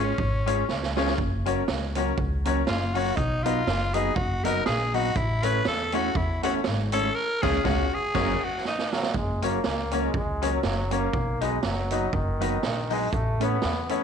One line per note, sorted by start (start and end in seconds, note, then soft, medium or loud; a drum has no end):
0.00 0.11 G#1 medium
0.00 0.12 G#3 medium
0.00 0.11 C#4 medium
0.00 0.12 C#4 medium
0.00 0.97 C#4 medium
0.00 0.11 F4 medium
0.00 0.12 F4 medium
0.00 0.11 G#4 medium
0.00 0.12 G#4 medium
0.00 0.12 C#5 loud
0.18 0.61 G#1 medium
0.18 kick loud
0.46 0.61 G#3 medium
0.46 0.61 C#4 medium
0.46 0.62 C#4 medium
0.46 0.61 F4 medium
0.46 0.62 F4 medium
0.46 0.62 G#4 medium
0.46 0.62 G#4 loud
0.46 0.62 C#5 loud
0.46 closed hi-hat medium
0.68 1.11 C#2 loud
0.68 muted clean electric guitar stroke soft
0.68 snare medium
0.83 snare medium
0.96 1.11 G#3 medium
0.96 1.11 C#4 medium
0.96 1.12 F4 medium
0.96 1.11 F4 medium
0.96 1.11 G#4 medium
0.96 1.12 G#4 medium
0.96 1.11 C#5 loud
0.96 snare medium
1.07 snare medium
1.18 1.61 F#1 loud
1.18 kick loud
1.46 1.61 F#3 medium
1.46 1.61 A#3 medium
1.46 1.60 C#4 medium
1.46 1.62 C#4 medium
1.46 1.61 F#4 medium
1.46 1.62 F#4 loud
1.46 1.61 A#4 medium
1.46 1.61 C#5 loud
1.46 closed hi-hat medium
1.68 2.10 C#2 medium
1.68 snare loud
1.95 2.11 F#3 medium
1.95 2.11 A#3 medium
1.95 2.11 C#4 loud
1.95 2.11 C#4 medium
1.95 2.11 F#4 medium
1.95 2.11 F#4 loud
1.95 2.11 A#4 medium
1.95 2.11 C#5 loud
1.95 closed hi-hat medium
2.18 2.60 C#2 loud
2.18 kick loud
2.45 2.60 F#3 loud
2.45 2.61 A#3 medium
2.45 2.61 C#4 loud
2.45 2.60 C#4 medium
2.45 2.61 F#4 loud
2.45 2.60 F#4 medium
2.45 2.61 A#4 medium
2.45 2.61 C#5 loud
2.45 closed hi-hat medium
2.67 3.10 F#1 loud
2.67 2.95 F4 medium
2.67 muted clean electric guitar stroke medium
2.67 snare loud
2.94 3.10 F#3 medium
2.94 3.10 A#3 medium
2.94 3.10 C#4 medium
2.94 3.11 C#4 medium
2.94 3.18 F#4 medium
2.94 3.10 F#4 medium
2.94 3.11 F#4 medium
2.94 3.10 A#4 medium
2.94 3.10 C#5 loud
2.94 open hi-hat medium
3.16 3.60 B1 loud
3.16 3.45 D#4 medium
3.16 kick loud
3.16 hi-hat pedal medium
3.43 3.60 F#3 medium
3.43 3.60 B3 loud
3.43 3.60 D#4 medium
3.43 3.60 D#4 loud
3.43 3.95 F4 loud
3.43 3.60 F#4 medium
3.43 3.61 F#4 medium
3.43 3.60 B4 medium
3.43 3.60 D#5 loud
3.43 closed hi-hat medium
3.67 4.10 F#1 medium
3.67 snare loud
3.94 4.10 F#3 medium
3.94 4.10 B3 medium
3.94 4.09 D#4 medium
3.94 4.10 D#4 loud
3.94 4.09 F#4 medium
3.94 4.10 F#4 loud
3.94 4.17 G#4 medium
3.94 4.10 B4 medium
3.94 4.10 D#5 loud
3.94 closed hi-hat medium
4.15 4.59 F#1 loud
4.15 4.45 F#4 medium
4.15 kick loud
4.43 4.59 F#3 loud
4.43 4.59 B3 loud
4.43 4.60 D#4 loud
4.43 4.59 D#4 loud
4.43 4.60 F#4 loud
4.43 4.59 F#4 medium
4.43 4.65 A#4 loud
4.43 4.60 B4 medium
4.43 4.60 D#5 loud
4.43 closed hi-hat medium
4.66 5.09 A#1 loud
4.66 4.96 G#4 loud
4.66 snare loud
4.93 5.09 F#3 medium
4.93 5.09 B3 medium
4.93 5.09 D#4 medium
4.93 5.10 D#4 medium
4.93 5.17 F#4 loud
4.93 5.09 F#4 medium
4.93 5.10 F#4 medium
4.93 5.09 B4 medium
4.93 5.10 D#5 loud
4.93 open hi-hat medium
5.15 5.58 A1 loud
5.15 5.45 E4 loud
5.15 kick loud
5.15 hi-hat pedal medium
5.43 5.59 A3 medium
5.43 5.58 C#4 medium
5.43 5.59 C#4 medium
5.43 5.59 E4 medium
5.43 5.60 E4 loud
5.43 5.59 A4 medium
5.43 5.60 A4 medium
5.43 5.66 B4 loud
5.43 5.59 C#5 loud
5.43 closed hi-hat medium
5.65 6.08 E2 loud
5.65 5.96 A4 loud
5.65 snare loud
5.92 6.09 A3 medium
5.92 6.08 C#4 loud
5.92 6.09 C#4 medium
5.92 6.08 E4 medium
5.92 6.09 E4 medium
5.92 6.18 F#4 loud
5.92 6.09 A4 medium
5.92 6.10 A4 medium
5.92 6.09 C#5 loud
5.92 closed hi-hat medium
6.15 6.58 E2 loud
6.15 6.43 E4 medium
6.15 kick loud
6.42 6.58 A3 medium
6.42 6.58 C#4 loud
6.42 6.59 E4 loud
6.42 6.58 E4 medium
6.42 6.54 F#4 medium
6.42 6.59 A4 loud
6.42 6.58 A4 medium
6.42 6.59 C#5 loud
6.42 closed hi-hat medium
6.64 7.09 G#1 loud
6.64 snare loud
6.92 7.09 A3 medium
6.92 7.08 C#4 medium
6.92 7.09 C#4 medium
6.92 7.08 E4 medium
6.92 7.09 E4 loud
6.92 7.16 A4 loud
6.92 7.08 A4 medium
6.92 7.09 A4 medium
6.92 7.08 C#5 loud
6.92 closed hi-hat loud
7.15 7.43 A#4 loud
7.42 7.59 C#2 loud
7.42 7.57 G#3 loud
7.42 7.58 C#4 loud
7.42 7.58 F4 loud
7.42 7.65 G#4 loud
7.42 7.58 G#4 loud
7.42 7.59 G#4 loud
7.42 7.59 C#5 loud
7.42 kick loud
7.42 snare loud
7.42 crash medium
7.64 7.84 C#2 loud
7.64 7.84 G#3 loud
7.64 7.84 C#4 loud
7.64 7.85 C#4 loud
7.64 7.84 F4 loud
7.64 7.85 F4 loud
7.64 7.95 F#4 loud
7.64 7.84 G#4 loud
7.64 7.85 G#4 loud
7.64 7.84 C#5 loud
7.64 kick loud
7.64 snare loud
7.94 8.45 G#4 loud
8.14 8.34 F#1 loud
8.14 8.34 F#3 loud
8.14 8.34 A#3 loud
8.14 8.34 C#4 loud
8.14 8.34 F#4 loud
8.14 8.35 F#4 loud
8.14 8.34 A#4 loud
8.14 8.35 C#5 loud
8.14 kick loud
8.14 snare loud
8.14 crash medium
8.44 8.65 F#4 loud
8.65 9.12 D#4 medium
8.65 snare medium
8.79 snare medium
8.93 9.13 F#3 medium
8.93 snare medium
9.03 snare medium
9.14 9.57 F#1 loud
9.14 9.45 G#3 medium
9.14 kick loud
9.42 9.58 F#3 medium
9.42 9.58 A#3 medium
9.42 10.06 A#3 loud
9.42 9.57 C#4 medium
9.42 9.58 C#4 medium
9.42 9.57 F#4 medium
9.42 9.58 F#4 medium
9.42 9.57 A#4 medium
9.42 9.57 C#5 medium
9.42 closed hi-hat medium
9.64 10.07 C#2 medium
9.64 snare loud
9.91 10.08 F#3 medium
9.91 10.08 A#3 medium
9.91 10.07 C#4 medium
9.91 10.08 C#4 medium
9.91 10.07 F#4 medium
9.91 10.08 F#4 medium
9.91 10.07 A#4 medium
9.91 10.07 C#5 loud
9.91 closed hi-hat medium
10.05 10.15 G#3 medium
10.14 10.57 C#2 medium
10.14 10.51 G#3 medium
10.14 kick loud
10.42 10.57 F#3 medium
10.42 10.57 A#3 medium
10.42 10.56 C#4 medium
10.42 10.57 C#4 medium
10.42 10.56 F#4 medium
10.42 10.58 F#4 medium
10.42 10.57 A#4 medium
10.42 10.57 C#5 loud
10.42 closed hi-hat medium
10.54 10.64 F#3 medium
10.63 11.06 F#1 medium
10.63 10.94 F#3 medium
10.63 muted clean electric guitar stroke soft
10.63 snare loud
10.91 11.07 F#3 medium
10.91 11.07 A#3 medium
10.91 11.43 A#3 loud
10.91 11.06 C#4 medium
10.91 11.07 C#4 medium
10.91 11.06 F#4 medium
10.91 11.07 F#4 medium
10.91 11.06 A#4 medium
10.91 11.06 C#5 loud
10.91 closed hi-hat medium
11.13 11.56 B1 loud
11.13 kick loud
11.41 11.56 F#3 medium
11.41 11.66 G#3 medium
11.41 11.57 B3 medium
11.41 11.55 D#4 medium
11.41 11.57 D#4 medium
11.41 11.56 F#4 medium
11.41 11.57 F#4 medium
11.41 11.56 B4 medium
11.41 11.56 D#5 medium
11.41 closed hi-hat medium
11.63 12.06 F#1 medium
11.63 12.15 F#3 medium
11.63 snare loud
11.91 12.06 F#3 medium
11.91 12.06 B3 medium
11.91 12.07 D#4 medium
11.91 12.06 D#4 medium
11.91 12.06 F#4 medium
11.91 12.07 F#4 medium
11.91 12.06 B4 medium
11.91 12.07 D#5 loud
11.91 closed hi-hat medium
12.13 12.56 F#1 medium
12.13 12.91 D#3 medium
12.13 kick loud
12.40 12.56 F#3 loud
12.40 12.56 B3 medium
12.40 12.55 D#4 medium
12.40 12.56 D#4 loud
12.40 12.55 F#4 medium
12.40 12.56 F#4 loud
12.40 12.55 B4 medium
12.40 12.56 D#5 loud
12.40 closed hi-hat loud
12.63 13.06 A#1 loud
12.63 snare loud
12.90 13.06 F#3 medium
12.90 13.14 G#3 loud
12.90 13.06 B3 medium
12.90 13.05 D#4 loud
12.90 13.06 D#4 loud
12.90 13.05 F#4 medium
12.90 13.06 F#4 loud
12.90 13.05 B4 medium
12.90 13.05 D#5 loud
12.90 open hi-hat medium
13.12 13.55 A1 loud
13.12 13.41 A3 loud
13.12 kick loud
13.12 hi-hat pedal medium
13.40 13.55 A3 loud
13.40 13.88 B3 loud
13.40 13.55 C#4 loud
13.40 13.55 C#4 medium
13.40 13.56 E4 loud
13.40 13.55 E4 medium
13.40 13.56 A4 loud
13.40 13.56 A4 medium
13.40 13.56 C#5 medium
13.40 closed hi-hat medium
13.62 14.04 E2 medium
13.62 snare loud
13.89 14.04 A3 medium
13.89 14.04 B3 medium
13.89 14.04 C#4 medium
13.89 14.04 E4 medium
13.89 14.04 A4 medium
13.89 14.04 C#5 loud
13.89 closed hi-hat medium